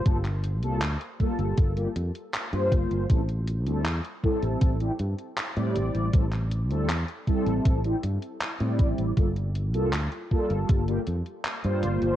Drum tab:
HH |xxxxxxxxxxxxxxxx|xxxxxx-xxxxxxxxx|xxxxxxxxxxxxxxxx|xxxxxx-xxxxxxxxx|
CP |-x--x-------x---|----x-------x---|-x--x-------x---|----x-------x---|
BD |o-----o-o-----o-|o-----o-o-------|o-----o-o-----o-|o-----o-o-------|